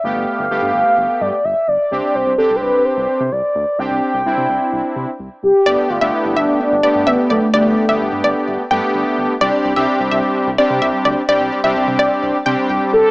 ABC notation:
X:1
M:4/4
L:1/16
Q:1/4=128
K:C
V:1 name="Synth pluck"
z16 | z16 | z16 | d2 z e z2 e2 z2 d2 e z d z |
d2 z e2 z d z3 g2 z4 | d2 z e z2 e2 z2 d2 e z d z | d2 z e2 z d z3 g2 z4 |]
V:2 name="Soft synth lead"
f8- f2 d2 e2 d2- | d2 c2 A3/2 c/2 B2 c4 d4 | g12 z2 G2- | G2 F2 E2 D2 D4 B,2 A,2 |
A,6 z8 z2 | z16 | z12 z2 A2 |]
V:3 name="Analog polysynth"
[A,B,G]4 [A,B,G]6- [A,B,G] z4 z | [CDG]4 [CDG]6- [CDG] z4 z | [CDG]4 [CDE]6- [CDE] z4 z | [A,B,DG]3 [A,B,DG]6 z [A,B,DG]4- [A,B,DG] z |
[A,B,DG]3 [A,B,DG]6 z [A,B,DG]4- [A,B,DG] z | [G,CDG]3 [G,CDG]6 z [G,CDG]4- [G,CDG] z | [G,CDG]3 [G,CDG]6 z [G,CDG]4- [G,CDG] z |]
V:4 name="Analog synth bass" clef=bass
G,,, G,,, z G,,, G,,, G,, G,,, z G,,, z G,, z G,,, z G,,, z | C,, z C,, C,, z C,, C,, z2 C,, z C, C,, z D,, z | C,, C,, z C,, C,, C, C,, z C,, z C, z C,, z C,, z | G,,, z G,,, G,,, z G,,, G,,, z2 G,,, z G,, A,,, z B,,, z |
G,,, G,,, z G,,, G,,, G,, G,,, z G,,, z G,, z G,,, z G,,, z | C,, z C,, C,, z C,, C,, z2 C,, z C, C,, z D,, z | C,, C,, z C,, C,, C, C,, z C,, z C, z C,, z C,, z |]